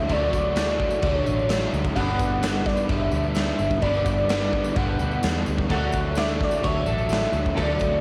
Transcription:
Already playing: F#3 E5
0.08 D2 D3 F#3 A3 D4, kick, tambourine, crash
0.12 D5
0.33 kick, tambourine
0.55 D3 F#3 A3 D4, snare, tambourine, crash
0.68 tambourine
0.80 kick
0.91 tambourine
1.02 D2 D3 F#3 A3 D4 C#5, kick, tambourine, crash
1.25 A1 F#3 A3 D4, tambourine
1.39 tambourine
1.49 D3 F#3 A3 D4, snare, tambourine, crash
1.73 D2, tambourine
1.85 kick, tambourine
1.95 G1 G2 D3 G3 B3 D4 F#5, kick, tambourine, crash
2.19 kick, tambourine
2.42 D3 G3 B3 D4, snare, tambourine, crash
2.66 D5, kick, snare
2.77 tambourine
2.89 G1 G2 D3 G3 B3 D4 E5, kick, tambourine, crash
3.12 D2 B3 D4, tambourine
3.16 G3
3.24 tambourine
3.34 D3 G3 B3 E5, snare, tambourine, crash
3.39 D4
3.59 G1, tambourine
3.70 kick, tambourine
3.82 G1 G2 D3 G3 B3 D4 D5, kick, tambourine, crash
3.94 tambourine
4.05 kick, tambourine
4.29 D3 G3 B3 D4, snare, tambourine, crash
4.53 kick
4.64 tambourine
4.76 G1 G2 D3 G3 B3 D4 F#5, kick, crash
4.99 D2 G3 B3 D4, tambourine
5.11 tambourine
5.23 E2 D3 G3 B3 D4, snare, tambourine, crash
5.46 D2, tambourine
5.58 kick
5.69 D2 D3 F#3 A3 D4 A4 F#5, kick, tambourine, crash
5.92 kick, tambourine
6.15 D3 F#3 A3 D4 D5 E5, snare, tambourine, crash
6.29 tambourine
6.41 D5, kick, snare
6.51 tambourine
6.63 D2 D3 F#3 A3 D4 C#5 E5, kick, tambourine, crash
6.86 A1 F#3 A3 D4 A4, tambourine
6.98 tambourine
7.09 D3 F#3 A3 D4, snare, tambourine, crash
7.33 D2, tambourine
7.45 kick, tambourine
7.57 D2 D3 F#3 A3 D4 A4, kick, tambourine, crash
7.62 D5
7.79 kick, tambourine

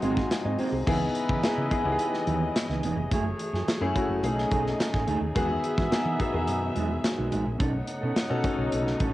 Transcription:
Already playing: C3 F#3 G#3 C4 D#4 F#4
0.02 G#1 G#3 C4 D#4 F4 F#4 G#4, closed hi-hat, muted conga, low conga
0.10 F#4
0.17 muted clean electric guitar stroke, kick, snare
0.31 muted clean electric guitar stroke, snare, closed hi-hat, high conga
0.45 G#2 C4 F#4 G#4 D#5
0.58 C4 D#4 F#4 G#4 C5, open hi-hat, high conga
0.72 C2 C4 G#4, muted clean electric guitar stroke
0.86 C#2 C#3 E3 G#3 B3 D#4 E4 G#4 B4 D#5, kick, crash, muted conga
1.01 muted clean electric guitar stroke
1.15 muted clean electric guitar stroke, closed hi-hat
1.29 C#3 E3 B3 D#4, kick
1.43 B3 D#4 E4 G#4, muted fretless electric bass stroke, muted clean electric guitar stroke, snare, closed hi-hat, high conga
1.58 C#3, muted clean electric guitar stroke
1.70 B3 D#4 E4 G#4, kick, closed hi-hat
1.84 C#2 B3 D#4 E4 G4, muted clean electric guitar stroke
1.92 G#4
1.99 closed hi-hat, muted conga
2.14 muted clean electric guitar stroke, snare
2.27 D#2 E3 B3 D#4, closed hi-hat, muted conga, low conga
2.41 muted clean electric guitar stroke
2.56 muted clean electric guitar stroke, snare, closed hi-hat, high conga
2.69 C#2 E3 B3 D#4, snare
2.83 E1 E3 B3 D#4, closed hi-hat, high conga
2.96 F1, muted clean electric guitar stroke, high conga
3.11 F#1 A3 E4 F#4 G#4 C#5, kick, closed hi-hat, muted conga
3.26 muted clean electric guitar stroke
3.39 muted clean electric guitar stroke, closed hi-hat
3.53 F#2 A3 E4 G#4, snare
3.68 muted clean electric guitar stroke, snare, closed hi-hat, high conga
3.80 F#2 A3 C#4 E4 G#4, muted clean electric guitar stroke
3.95 A3 C#4 E4 F#4, kick, closed hi-hat
4.09 F#1, muted clean electric guitar stroke
4.23 B1 C#3 A3 C#4 D#4 G#4 D#5, closed hi-hat, muted conga, low conga
4.38 muted clean electric guitar stroke, snare
4.51 B1 A3 D#4 G#4, kick, closed hi-hat, muted conga, low conga
4.66 muted clean electric guitar stroke, snare
4.80 muted clean electric guitar stroke, snare, closed hi-hat, high conga
4.94 A1 A3 D#4 G#4, kick, snare
5.07 D2 A3 D#4 G#4, closed hi-hat, high conga
5.21 D#2, muted clean electric guitar stroke, high conga
5.35 E2 B2 D#3 F#3 G#3 B3 D#4 F#4 G#4 E5, kick, closed hi-hat, muted conga
5.49 muted clean electric guitar stroke
5.63 muted clean electric guitar stroke, closed hi-hat
5.78 E3 G#3 D#4 F#4, kick, snare
5.92 B3 D#4 F#4 G#4, muted clean electric guitar stroke, muted fretless electric bass stroke, snare, closed hi-hat, high conga
6.05 E3, muted clean electric guitar stroke
6.19 B3 D#4 F#4 G#4, kick, closed hi-hat
6.34 E2 D#3 B3 F#4 G#4, muted clean electric guitar stroke
6.47 F#2, closed hi-hat, muted conga
6.62 muted clean electric guitar stroke
6.75 E2 G#3 D#4 F#4, closed hi-hat, muted conga, low conga
6.89 muted clean electric guitar stroke
7.03 muted clean electric guitar stroke, snare, closed hi-hat, high conga
7.17 B1 G#3 D#4 F#4
7.31 A1 G#3 D#4 F#4, closed hi-hat, high conga
7.46 A#1, muted clean electric guitar stroke, high conga
7.59 B1 C#3 A3 B3 C#4 D#4 A4 C#5 F#5, kick, closed hi-hat, muted conga
7.74 muted clean electric guitar stroke
7.87 muted clean electric guitar stroke, closed hi-hat
8.01 B2 C#4 D#4 A4
8.15 muted clean electric guitar stroke, muted fretless electric bass stroke, snare, closed hi-hat, high conga
8.29 B2 C#4 D#4 F#4 A4, muted clean electric guitar stroke
8.44 C#4 D#4 F#4 A4, kick, closed hi-hat
8.58 B1, muted clean electric guitar stroke
8.72 B1, closed hi-hat
8.85 muted clean electric guitar stroke, snare
9.00 A1 C#4 D#4 A4, kick, closed hi-hat, muted conga, low conga

